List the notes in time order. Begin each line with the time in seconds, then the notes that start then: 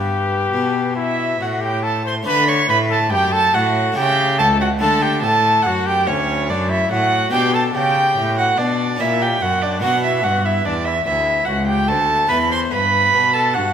Already playing: G2 B3 D4 G4 B4
0.53 B2
0.96 E4 E5
1.40 A2 F#4 F#5
1.61 G4 G5
1.83 A4 A5
2.05 C5 C6
2.23 D3 A3 D4 B5
2.27 D3 B4
2.47 C#5 C#6
2.69 A2 B4 B5
2.90 A4 A5
3.11 F#2 G4 G5
3.33 A4 A5
3.54 A2 F#4 F#5
3.92 A3 E4
3.96 C#3 G4 G5
4.39 C#2 A4 A5
4.60 F#4 F#5
4.79 D3 A3 D4 A4 A5
5.02 G4 G5
5.22 A2 A4 A5
5.63 F#2 F#5
5.67 F#4
5.86 G4 G5
6.07 D2 C#4 C#5
6.49 F#2 D4 D5
6.70 E4 E5
6.90 A2 F#4 F#5
7.30 B2 B3 D4 G4 G5
7.54 A4 A5
7.74 C#3 G4 G5
8.16 A2
8.38 F#4 F#5
8.58 B2 D4 D5
8.97 A#2 C#4 E4 E5
9.22 G4 G5
9.41 F#2 F#4 F#5
9.62 D4 D5
9.80 B2 B3 D4 F#4 F#5
10.04 E4 E5
10.23 G2 F#4 F#5
10.45 E4 E5
10.65 E2 D4 D5
10.85 E4 E5
11.05 D2 E4 E5
11.45 C#2 F#4 F#5
11.67 G4 G5
11.88 D2 A4 A5
12.27 E2 B3 E4 B4 B5
12.31 E2
12.50 C5 C6
12.72 G2 B4 B5
13.13 B2
13.33 A4 A5
13.54 G2 F#4 F#5